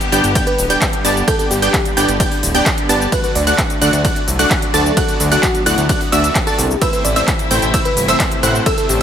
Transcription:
Already playing: D3 G3 B3 G4
0.01 closed hi-hat, shaker
0.12 G1 B3 D4 G4 D5 G5 G6, open hi-hat, shaker
0.24 G1, closed hi-hat, shaker
0.35 B3 D4 G4 D5 G5 G6, kick, closed hi-hat, ride, shaker
0.47 B4, closed hi-hat
0.58 D1, open hi-hat, shaker
0.70 B3 D4 G4 D5 G5 G6, closed hi-hat, shaker
0.81 kick, clap, closed hi-hat, ride, shaker
0.93 closed hi-hat
1.04 G1 B3 D4 G4 D5 A5 A6, open hi-hat, shaker
1.17 shaker
1.28 B3 D4 G4 A4 D5 G5 G6, kick, closed hi-hat, ride, shaker
1.39 A4, closed hi-hat, shaker
1.51 G1 G4, open hi-hat, shaker
1.62 B3 D4 G4 D5 G5 G6, closed hi-hat, shaker
1.74 kick, clap, closed hi-hat, ride, shaker
1.85 closed hi-hat, shaker
1.97 G1 B3 D4 G4 D5 G5 G6, open hi-hat, shaker
2.08 G1, closed hi-hat, shaker
2.20 B3 D4 G4 D5 G5 G6, kick, closed hi-hat, ride, shaker
2.31 open hi-hat
2.43 D1, open hi-hat, shaker
2.55 B3 D4 G4 D5 G5 G6, closed hi-hat, shaker
2.66 kick, clap, closed hi-hat, ride, shaker
2.78 closed hi-hat
2.89 G1 B3 D4 G4 D5 A5 A6, open hi-hat, shaker
3.02 shaker
3.12 F#3 A3 D4 F#4 B4 D5 F#5 F#6, kick, closed hi-hat, ride, shaker
3.24 B4, closed hi-hat, shaker
3.35 D2 D5, open hi-hat, shaker
3.47 A3 D4 F#4 D5 F#5 F#6, closed hi-hat, shaker
3.58 kick, clap, closed hi-hat, ride, shaker
3.70 closed hi-hat, shaker
3.81 D2 A3 D4 F#4 D5 F#5 F#6, open hi-hat, shaker
3.93 D2 D5, closed hi-hat, shaker
4.05 A3 D4 F#4 D5 F#5 F#6, kick, closed hi-hat, ride, shaker
4.16 closed hi-hat
4.28 C2, open hi-hat, shaker
4.39 A3 D4 F#4 D5 F#5 F#6, closed hi-hat, shaker
4.51 kick, clap, closed hi-hat, ride, shaker
4.62 closed hi-hat
4.74 D2 A3 D4 F#4 A4 D5 A5 A6, open hi-hat, shaker
4.86 shaker
4.97 A3 B3 D4 F#4 D5 F#5 F#6, kick, closed hi-hat, ride, shaker
5.08 closed hi-hat, shaker
5.20 D2, open hi-hat, shaker
5.32 A3 D4 F#4 D5 F#5 F#6, closed hi-hat, shaker
5.43 F#4, kick, clap, closed hi-hat, ride, shaker
5.55 closed hi-hat, shaker
5.66 D2 A3 D4 E4 F#4 D5 F#5 F#6, open hi-hat, shaker
5.78 D2, closed hi-hat, shaker
5.89 A3 D4 F#4 D5 F#5 F#6, kick, closed hi-hat, ride, shaker
6.01 open hi-hat
6.12 D2 A3 D4 F#4 D5 E5 E6, open hi-hat, shaker
6.24 closed hi-hat, shaker
6.35 kick, clap, closed hi-hat, ride, shaker
6.47 A3 D4 F#4 A4 D5 A5 A6, closed hi-hat, shaker
6.58 C2, open hi-hat, shaker
6.71 shaker
6.81 C3 E3 A3 C4 E4 B4 C5 E5 E6, kick, closed hi-hat, ride, shaker
6.93 B4, closed hi-hat, shaker
7.05 A1 D5, open hi-hat, shaker
7.16 A3 C4 E4 C5 D5 E5 E6, closed hi-hat, shaker
7.28 kick, clap, closed hi-hat, ride, shaker
7.39 closed hi-hat, shaker
7.51 A1 A3 C4 E4 C5 G5 G6, open hi-hat, shaker
7.62 A1, closed hi-hat, shaker
7.74 A3 C4 E4 C5 E5 E6, kick, closed hi-hat, ride, shaker
7.85 B4, closed hi-hat
7.97 G1, open hi-hat, shaker
8.08 A3 C4 E4 C5 E5 E6, closed hi-hat, shaker
8.20 kick, clap, closed hi-hat, ride, shaker
8.32 closed hi-hat
8.43 A1 A3 C4 E4 C5 F#5 F#6, open hi-hat, shaker
8.55 shaker
8.66 A3 D4 E4 A4 E5 E6, kick, closed hi-hat, ride, shaker
8.78 A4, closed hi-hat, shaker
8.89 A1 G4, open hi-hat, shaker

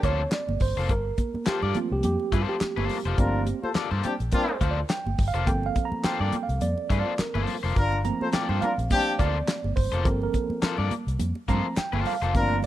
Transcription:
Already playing: F3 A#3 C4 A4
0.03 D2 A#3 F4 A4 C5 C#5, kick, closed hi-hat
0.32 D5, snare, clap, closed hi-hat, muted conga
0.49 G1, muted conga, high conga
0.60 G1 C5, kick, open hi-hat, low conga
0.77 F1 A#3 F4 A4 C5
0.89 G1 A#4, kick, closed hi-hat, muted conga
1.18 kick, closed hi-hat, high conga
1.34 muted fingered electric bass stroke, high conga
1.46 A#3 F4 G4 A4 C5, muted fingered electric bass stroke, snare, clap, closed hi-hat, muted conga
1.62 G2 A#3 F4 A4 D5, muted conga
1.75 F3 A3 A#3 C4 F4, closed hi-hat, high conga, low conga
1.91 C2 G4
2.03 F2 G4, closed hi-hat, muted conga, high conga, low conga
2.20 muted conga
2.32 G2 A#3 F4 A4 C5, kick, closed hi-hat
2.49 G4
2.61 muted fingered electric bass stroke, snare, clap, closed hi-hat, muted conga
2.77 G1 A#3 F4 A4 C5, muted conga, high conga
2.89 open hi-hat, low conga
3.05 F1 A#3 F4 A4 C5, closed hi-hat
3.18 G1 F3 A3 A#3 C4 D4 F4 A#4, kick, closed hi-hat, muted conga
3.47 closed hi-hat, high conga
3.63 F4 A4 C5, high conga
3.75 A#3 F4 A4 D5, muted fingered electric bass stroke, snare, clap, closed hi-hat, muted conga
3.91 G2 A#3 F4 A4 C5, muted conga
4.04 C4 D4 G4, closed hi-hat, high conga, low conga
4.20 A#1, closed hi-hat
4.32 C4 D4 F4 A#4, kick, closed hi-hat, muted conga, high conga, low conga
4.49 C5, muted conga
4.61 D2 A#3 F4 A4 C5, kick, closed hi-hat
4.71 D5
4.90 G5, snare, clap, closed hi-hat, muted conga
5.06 G1, muted conga, high conga
5.18 G1, kick, open hi-hat, low conga
5.28 F5
5.34 F1 A#3 F4 A4 C5, closed hi-hat
5.46 G1 F3 A#3 C4 A4 G5, kick, closed hi-hat, muted conga
5.63 F5, muted conga
5.75 kick, closed hi-hat, high conga
5.85 A#5
5.92 muted fingered electric bass stroke, high conga
6.04 A#3 F4 A4 C5 G5, muted fingered electric bass stroke, snare, clap, closed hi-hat
6.20 G2 A#3 F4 A4 D5
6.32 closed hi-hat, high conga, low conga
6.43 F5
6.49 C2, closed hi-hat
6.61 F2 D5, closed hi-hat, high conga, low conga
6.78 muted conga
6.90 G2 A#3 F4 A4 C5, kick, closed hi-hat
7.01 D5
7.19 A#4, muted fingered electric bass stroke, snare, clap, closed hi-hat
7.34 G1 A#3 F4 A4 C5, muted conga, high conga
7.47 open hi-hat, low conga
7.63 F1 A#3 F4 A4 C5
7.76 G1 D4 F4 A#4, kick, closed hi-hat
7.92 muted conga
8.04 F3 A3 A#3 C4 A#5, closed hi-hat, high conga
8.21 F4 A4 C5, high conga
8.33 A#3 F4 A4 D5 G5, muted fingered electric bass stroke, snare, clap, closed hi-hat, muted conga
8.49 G2 A#3 F4 A4 C5, muted conga
8.62 D4 F4 A#4 F5, closed hi-hat, high conga, low conga
8.78 A#1, closed hi-hat
8.91 C4 D4 G4, kick, closed hi-hat, muted conga, high conga, low conga
9.19 D2 A#3 F4 A4 C5 D5, kick, closed hi-hat
9.48 snare, clap, closed hi-hat, muted conga
9.64 G1, high conga
9.76 G1 C5, kick, open hi-hat, low conga
9.92 F1 A#3 F4 A4 C5, closed hi-hat
10.04 G1 F3 A#3 C4 A4 A#4, kick, closed hi-hat
10.22 A#4, muted conga
10.34 kick, closed hi-hat, high conga
10.50 muted fingered electric bass stroke, high conga
10.62 A#3 F4 A4 C5, muted fingered electric bass stroke, snare, clap, closed hi-hat, muted conga
10.78 G2 A#3 F4 A4 D5, muted conga
10.91 closed hi-hat, high conga, low conga
11.07 C2, closed hi-hat
11.19 F2, closed hi-hat, high conga, low conga
11.35 muted conga
11.48 G2 F3 A3 A#3 C4 F4 A4 C5 A#5, kick, closed hi-hat
11.76 G5, muted fingered electric bass stroke, snare, clap, closed hi-hat, muted conga
11.93 G1 A#3 F4 A4 C5, muted conga, high conga
12.06 F5, open hi-hat, low conga
12.22 F1 A#3 F4 A4 C5, closed hi-hat
12.34 G1 F3 A3 A#3 C4 D4 F4 A#4, kick, closed hi-hat
12.51 muted conga
12.63 high conga

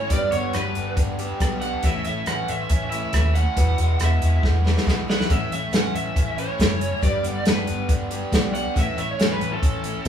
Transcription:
Already playing: G#1 A3 C#4 E4 C#5
0.10 G1 G2 D3 G3 B3 D4 G4 D5, kick, closed hi-hat
0.31 G1 B3 G4 C#5, closed hi-hat
0.35 G3 B3 D4
0.53 G1 G3 B3 D4 G4 B4, cross-stick, closed hi-hat
0.75 G1 B3, closed hi-hat
0.96 G1 D4, kick, closed hi-hat
1.19 G3 B3 D4 G4, closed hi-hat
1.40 B1 G3 B3, kick, cross-stick, closed hi-hat
1.44 D4 G4
1.61 G3 B3 D4 G4 F#5, closed hi-hat
1.83 A1 A2 E3 A3 C#4 E5, kick, closed hi-hat
1.87 E4
2.05 A1 C#4 E4 E5, closed hi-hat
2.09 A3
2.26 A1 E3 A3 C#4 E4 F#5, cross-stick, closed hi-hat
2.48 A1 A3 E5, closed hi-hat
2.69 A1 C#4, kick, closed hi-hat
2.90 C#4 E4 E5, closed hi-hat
2.94 A3
3.13 D#2 E3 A3 C#4 E4, kick, cross-stick, closed hi-hat
3.35 A3 C#4 E4 F#5, closed hi-hat
3.56 E1 E2 B2 E3 G#3 B3 E4, kick, closed hi-hat
3.78 E1 E3 G#3 B3 E4, closed hi-hat
4.00 E1 E3 G#3 B3 E4 E5, cross-stick, closed hi-hat
4.21 E1 G#3, closed hi-hat
4.43 E1 B3, kick, snare
4.65 E3 G#3 B3 E4, snare
4.77 snare
4.86 B1 E3 G#3 B3 E4, kick, snare
5.08 E3 G#3 B3 E4 F#5, snare
5.20 snare
5.29 A1 A2 E3 A3 C#4 E4 E5, kick, closed hi-hat
5.51 A1 A3 C#4 E4 E5, closed hi-hat
5.71 A1 E3 A3 C#4 E4 F#5, snare, closed hi-hat
5.95 A1 A3 E5, closed hi-hat
6.16 A1 C#4, kick, closed hi-hat
6.38 A3 C#4 E4 C#5, closed hi-hat
6.58 F#1 E3 A3 C#4 E4, kick, snare, closed hi-hat
6.79 A3 C#4 E4, closed hi-hat
7.02 G1 G2 D3 G3 B3 D4 G4 D5, kick, closed hi-hat
7.23 G1 G3 B3 D4 G4, closed hi-hat
7.45 G1 G3 B3 D4 G4 B4, snare, closed hi-hat
7.67 G1 B3, closed hi-hat
7.89 G1 D4, kick, closed hi-hat
8.10 G3 B3 D4 G4, closed hi-hat
8.32 B1 G3 B3 D4 G4, kick, snare, closed hi-hat
8.54 G3 B3 D4 G4 F#5, closed hi-hat
8.76 A1 A2 E3 A3 C#4 E4 E5, kick, closed hi-hat
8.97 A1 A3 C#4 E4 E5, closed hi-hat
9.11 C#5
9.19 A1 E3 A3 C#4 E4, snare, closed hi-hat
9.32 B4
9.40 A1 A3, closed hi-hat
9.53 A4
9.62 A1 C#4, kick, closed hi-hat
9.84 A3 C#4 E4, closed hi-hat

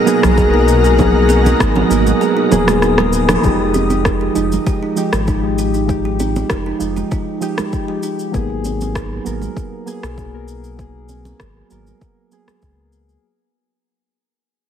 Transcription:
Already playing: B2 F#3 G#3 A#3 B3 F#4 G#4 A#4 D#5 D#6
0.06 F#3 A#3 B3 D#4 G#4, shaker
0.23 B1, cross-stick, low conga, shaker
0.38 G#4, kick, shaker
0.53 F#3 A#3 B3 D#4 A#4
0.68 shaker
0.84 G#4, shaker
0.97 F#3 A#3 B3 D#4, kick, low conga, shaker
1.01 G#4
1.29 G#4, high conga, shaker
1.45 D#4, high conga, shaker
1.60 G#1, kick, cross-stick, shaker
1.76 G#4, high conga, low conga
1.90 G#1 F#3 A#3 B3 D#4 A#4, shaker
2.07 low conga, shaker
2.21 G#4, shaker
2.37 D#4
2.50 D#1 F#3 A#3 B3 G#4 A#4, low conga, shaker
2.66 F#3 A#3 B3, cross-stick, low conga, shaker
2.70 G#4
2.82 D#4, cross-stick, shaker
2.98 G#4, cross-stick, low conga
3.13 shaker
3.29 D#4, cross-stick, low conga, shaker
3.42 F1 F3 G#3 D#4 G4, kick, shaker
3.74 G4, high conga, shaker
3.90 D#4, high conga, shaker
4.05 kick, cross-stick, shaker
4.21 G4
4.34 F1 F3 G#3 D#4, shaker
4.52 low conga, shaker
4.67 G4, kick, shaker
4.83 D#4
4.96 F3 G#3 D#4 G4, shaker
5.13 G#1 G4, cross-stick, shaker
5.27 D#4, kick, shaker
5.42 F3 G#3 D#4
5.58 G4, shaker
5.74 D#4, shaker
5.86 F3 G#3 D#4, kick, shaker
5.90 G4
6.05 G4
6.20 D#4, high conga, shaker
6.36 high conga, shaker
6.50 F1 G4, kick, cross-stick, shaker
6.66 D#4
6.79 F1 F3 G#3 D#4, shaker
6.96 G4, low conga, shaker
7.11 D#4, kick, shaker
7.41 F3 G#3 D#4 G4, shaker
7.58 D#4, cross-stick, low conga, shaker
7.73 kick, shaker
7.88 F3 G#3 D#4 G4
8.03 D#4, shaker
8.19 shaker
8.31 G#1 F#3 A#3 B3, kick, shaker
8.36 G#4
8.65 high conga, shaker
8.81 high conga, shaker
8.95 kick, cross-stick, shaker
9.25 G#1 F#3 A#3 B3 A#4, shaker
9.42 low conga, shaker
9.57 kick, shaker
9.86 F#3 A#3 B3 G#4, shaker
10.03 B1, cross-stick, shaker
10.18 kick, shaker
10.32 F#3 A#3 B3 A#4
10.48 shaker
10.64 shaker
10.76 F#3 A#3 B3, kick, shaker
10.81 G#4
11.09 high conga, shaker
11.25 high conga, shaker
11.40 G#1, kick, cross-stick, shaker
11.70 G#1 F#3 A#3 B3 A#4, shaker
11.87 low conga, shaker
12.01 kick, shaker
12.31 F#3 A#3 B3 G#4, shaker
12.46 F#3 A#3 B3, cross-stick, low conga, shaker
12.51 G#4
12.62 C#2, kick, shaker
12.93 shaker
13.09 shaker

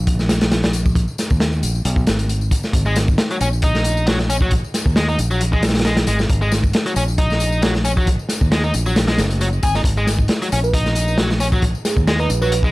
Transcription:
Already playing: A#1
0.07 kick, closed hi-hat, tambourine
0.19 snare, tambourine
0.29 snare, closed hi-hat, tambourine
0.41 snare, closed hi-hat, tambourine
0.51 snare, closed hi-hat, tambourine
0.63 snare, closed hi-hat, tambourine
0.73 closed hi-hat, tambourine
0.86 kick, tambourine
0.95 kick, closed hi-hat, tambourine
1.08 tambourine
1.18 snare, closed hi-hat, tambourine
1.30 D#2, kick, tambourine
1.40 snare, closed hi-hat, tambourine
1.53 tambourine
1.63 A#1, closed hi-hat, tambourine
1.75 tambourine
1.85 B1, closed hi-hat, tambourine
1.96 kick, tambourine
2.07 G#1, snare, closed hi-hat, tambourine
2.19 closed hi-hat, tambourine
2.29 closed hi-hat, tambourine
2.41 tambourine
2.51 kick, closed hi-hat, tambourine
2.63 snare, tambourine
2.73 G#1, kick, closed hi-hat, tambourine
2.86 G#3, tambourine
2.96 snare, closed hi-hat, tambourine
3.08 kick, tambourine
3.18 snare, closed hi-hat, tambourine
3.31 F#3, closed hi-hat, tambourine
3.41 A#1 C#4, closed hi-hat, tambourine
3.53 tambourine
3.62 D#4, kick, closed hi-hat, tambourine
3.75 snare, tambourine
3.84 closed hi-hat, tambourine
3.97 tambourine
4.07 F#3, snare, closed hi-hat, tambourine
4.19 snare, tambourine
4.30 C#4, closed hi-hat, tambourine
4.41 F#3, kick
4.51 kick, closed hi-hat, tambourine
4.64 tambourine
4.74 snare, closed hi-hat, tambourine
4.86 D#2, kick
4.96 G#3, snare, closed hi-hat, tambourine
5.08 D#4, tambourine
5.18 A#1, closed hi-hat, tambourine
5.31 F#3, tambourine
5.41 closed hi-hat, tambourine
5.53 G#3, kick, tambourine
5.63 snare, closed hi-hat, tambourine
5.69 snare, closed hi-hat
5.74 snare, closed hi-hat, tambourine
5.79 snare, closed hi-hat
5.85 G#3, snare, closed hi-hat, tambourine
5.97 snare, closed hi-hat, tambourine
6.07 G#1 G#3, closed hi-hat, tambourine
6.19 snare, tambourine
6.29 G#1, kick, closed hi-hat, tambourine
6.42 G#3, tambourine
6.52 snare, closed hi-hat, tambourine
6.64 kick, tambourine
6.73 snare, closed hi-hat, tambourine
6.86 F#3, closed hi-hat, tambourine
6.96 A#1 C#4, closed hi-hat, tambourine
7.08 tambourine
7.18 D#4, kick, closed hi-hat, tambourine
7.30 snare, tambourine
7.40 closed hi-hat, tambourine
7.52 tambourine
7.62 F#3, snare, closed hi-hat, tambourine
7.74 snare, tambourine
7.85 C#4, closed hi-hat, tambourine
7.97 F#3, kick, tambourine
8.07 kick, closed hi-hat, tambourine
8.19 tambourine
8.29 snare, closed hi-hat, tambourine
8.41 D#2, kick, tambourine
8.52 G#3, snare, closed hi-hat, tambourine
8.63 D#4, tambourine
8.74 A#1, closed hi-hat, tambourine
8.86 F#3, tambourine
8.96 snare, closed hi-hat, tambourine
9.08 G#3, snare, closed hi-hat, tambourine
9.18 F#1, snare, closed hi-hat, tambourine
9.30 closed hi-hat, tambourine
9.41 F#3, closed hi-hat, tambourine
9.53 tambourine
9.63 G#1 G#4, kick, closed hi-hat, tambourine
9.75 D#4, snare, tambourine
9.84 G#1, kick, closed hi-hat, tambourine
9.97 G#3, tambourine
10.07 snare, closed hi-hat, tambourine
10.19 kick
10.28 snare, closed hi-hat, tambourine
10.42 F#3, closed hi-hat, tambourine
10.52 A#1 C#4, closed hi-hat, tambourine
10.64 B4, tambourine
10.73 D#4, kick, closed hi-hat, tambourine
10.86 snare, tambourine
10.95 closed hi-hat, tambourine
11.08 tambourine
11.18 F#3, snare, closed hi-hat, tambourine
11.30 snare, tambourine
11.40 C#4, closed hi-hat, tambourine
11.52 F#3, kick, tambourine
11.62 kick, closed hi-hat, tambourine
11.75 tambourine
11.85 G#4, snare, closed hi-hat, tambourine
11.97 D#2, kick, tambourine
12.07 G#3, snare, closed hi-hat, tambourine
12.19 D#4 B4, tambourine
12.30 A#1, closed hi-hat, tambourine
12.41 F#3 B4, tambourine
12.52 closed hi-hat, tambourine
12.63 G#3, kick, tambourine

